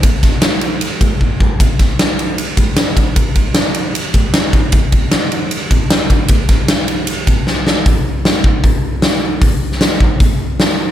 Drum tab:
RD |x-x-x-x-x-x-----|x-x-x-x-x-x-x-x-|x-x-x-x-x-x-x-x-|x-x-x-x-x-x-x-x-|
HH |----------------|----------------|----------------|----------------|
SD |--o-o-----------|--o-o-------o---|----o-------o---|----o-------o---|
BD |o-o-------o-o-o-|o-o-------o---o-|o-o-------o---o-|o-o-------o---o-|

RD |x-x-x-x-x-x-----|----------------|----------------|
HH |----------------|o---o---o---o---|o---o---o---o---|
SD |--o-o-------o-o-|----o-------o---|---oo-------o---|
BD |o-o-------o-----|o-----o-o-------|o-----o-o-------|